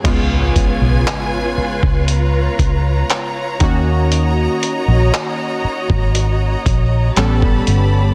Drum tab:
CC |x---------------|----------------|
HH |x-x-x---x-x-x-x-|x-x-x---x-x-x-x-|
CP |----x-------x---|----x-------x---|
BD |o-o----o--o---o-|-------o--o--o--|